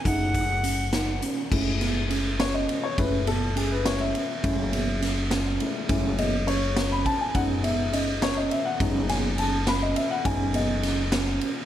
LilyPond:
<<
  \new Staff \with { instrumentName = "Flute" } { \time 5/8 \key fis \dorian \tempo 4 = 103 fis''2 r8 | r2 r8 | r2 r8 | r2 r8 |
r2 r8 | r2 r8 | r2 r8 | r2 r8 | }
  \new Staff \with { instrumentName = "Grand piano" } { \time 5/8 \key fis \dorian <a cis' e' gis'>2~ <a cis' e' gis'>8 | r4. cis''16 dis''8 cis''16 | b'8 a'8 gis'16 b'16 cis''16 e''8.~ | e''4.~ e''16 r8. |
r8 dis''8 cis''8. b''16 a''16 gis''16 | fis''8 e''8 dis''8 cis''16 dis''16 e''16 fis''16~ | fis''8 gis''8 a''8 b''16 dis''16 e''16 fis''16 | gis''8 dis''4 r4 | }
  \new Staff \with { instrumentName = "Grand piano" } { \time 5/8 \key fis \dorian r2 r8 | <gis a e'>2~ <gis a e'>8 | <gis a e'>4. <gis a e'>8 r8 | <gis a e'>8 r4. <gis a e'>8 |
<gis a e'>8 r2 | <gis b dis'>4. r4 | <gis b dis'>4. r4 | <gis b dis'>4. r4 | }
  \new Staff \with { instrumentName = "Tine electric piano" } { \time 5/8 \key fis \dorian dis'4 cis'8 dis'8 cis'8 | cis'8 b8 cis'8 cis'4 | cis'8 b8 cis'8 cis'4 | cis'8 b8 cis'8 cis'4 |
cis'8 b8 cis'8 cis'4 | cis'8 b8 cis'8 cis'4 | cis'8 b8 cis'8 cis'4 | cis'8 b8 cis'8 cis'4 | }
  \new Staff \with { instrumentName = "Upright bass" } { \clef bass \time 5/8 \key fis \dorian fis,,2 r8 | fis,,2 r8 | fis,,2 r8 | fis,,2 r8 |
fis,,2 r8 | fis,,2 r8 | fis,,2 r8 | fis,,2 r8 | }
  \new DrumStaff \with { instrumentName = "Drums" } \drummode { \time 5/8 <hh bd>8 <hh bd>8 hh8 <hh sn>8 hh8 | <cymc bd>8 <cymr sn>8 cymr8 <cymr sn>8 cymr8 | <bd cymr>8 cymr8 cymr8 <cymr sn>8 cymr8 | <bd cymr>8 cymr8 <cymr sn>8 <cymr sn>8 cymr8 |
<bd cymr>8 cymr8 cymr8 <cymr sn>8 <bd cymr>8 | <bd cymr>8 cymr8 cymr8 <cymr sn>8 cymr8 | <bd cymr>8 <cymr sn>8 cymr8 <cymr sn>8 cymr8 | <bd cymr>8 cymr8 <cymr sn>8 <cymr sn>8 cymr8 | }
>>